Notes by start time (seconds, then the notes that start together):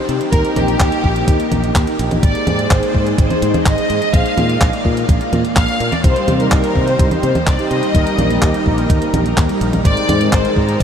Already playing: C4 D#4 G4
0.09 C3, closed hi-hat
0.21 closed hi-hat
0.32 D#2 A#3 A#4, kick, closed hi-hat
0.45 closed hi-hat
0.56 A#1 G4, closed hi-hat, high conga
0.68 closed hi-hat
0.80 D#2, kick, clap, closed hi-hat
0.92 closed hi-hat
1.04 A#1, kick
1.16 closed hi-hat
1.28 D#2, kick, closed hi-hat
1.40 closed hi-hat
1.52 A#1, closed hi-hat, high conga
1.64 closed hi-hat
1.75 D#2, kick, clap, closed hi-hat
1.87 closed hi-hat
1.99 A#1, closed hi-hat
2.11 closed hi-hat, high conga
2.23 G#1 G#3 D#4 G#4 C5 D5, kick, closed hi-hat
2.35 closed hi-hat
2.47 G#2, closed hi-hat, high conga
2.59 closed hi-hat
2.71 G#1 C5, kick, clap, closed hi-hat
2.83 closed hi-hat
2.94 G#2, kick
3.07 closed hi-hat
3.18 G#1 C5, kick, closed hi-hat
3.30 closed hi-hat, high conga
3.42 G#2, closed hi-hat
3.54 closed hi-hat, high conga
3.65 G#1 D#5, kick, clap, closed hi-hat
3.78 closed hi-hat
3.90 G#2, closed hi-hat
4.02 closed hi-hat
4.13 A#1 A#3 A#4 D5 F5, kick, closed hi-hat
4.26 closed hi-hat
4.37 A#2, closed hi-hat, high conga
4.50 closed hi-hat
4.61 A#1, kick, clap, closed hi-hat
4.73 closed hi-hat
4.85 A#2, kick
4.97 closed hi-hat
5.09 A#1, kick, closed hi-hat
5.21 closed hi-hat
5.33 A#2, closed hi-hat, high conga
5.45 closed hi-hat
5.56 A#1 F5, kick, clap, closed hi-hat
5.68 closed hi-hat
5.80 A#2, closed hi-hat
5.92 D5, closed hi-hat, high conga
6.04 C2 G3 C4 D#4 G4 C5, kick, closed hi-hat
6.16 closed hi-hat
6.28 C3, closed hi-hat, high conga
6.40 G3 C4 D#4 A#4, closed hi-hat
6.52 C2 A#4, kick, clap, closed hi-hat
6.64 closed hi-hat
6.75 C3 G3 C4 D#4 C5, kick
6.88 C5, closed hi-hat
6.99 C2, kick, closed hi-hat
7.11 G3 C4 D#4 C5, closed hi-hat, high conga
7.23 C3 C5, closed hi-hat
7.35 closed hi-hat, high conga
7.47 C2 D5, kick, clap, closed hi-hat
7.59 G3 C4 D#4 C5, closed hi-hat
7.71 C3 D#5, closed hi-hat
7.83 closed hi-hat
7.95 D#2 G3 A#3 D#4 A#4, kick, closed hi-hat
8.07 closed hi-hat
8.18 A#1, closed hi-hat, high conga
8.30 G3 A#3 D#4 G4, closed hi-hat
8.42 D#2, kick, clap, closed hi-hat
8.54 closed hi-hat
8.66 A#1 G3 A#3 D#4 A#4, kick
8.78 closed hi-hat
8.90 D#2, kick, closed hi-hat
9.02 G3 A#3 D#4 A#4, closed hi-hat
9.13 A#1, closed hi-hat, high conga
9.26 closed hi-hat
9.37 D#2, kick, clap, closed hi-hat
9.49 G3 A#3 D#4 A#4, closed hi-hat
9.61 A#1, closed hi-hat
9.73 closed hi-hat, high conga
9.85 G#1 G#3 C4 D#4 G#4 C5 D5, kick, closed hi-hat
9.97 closed hi-hat
10.09 G#2, closed hi-hat, high conga
10.21 G#3 C4 D#4 A#4, closed hi-hat
10.33 G#1 C5, kick, clap, closed hi-hat
10.45 closed hi-hat
10.56 G#2 G#3 C4 D#4 A#4 C5, kick
10.69 closed hi-hat
10.80 G#1, kick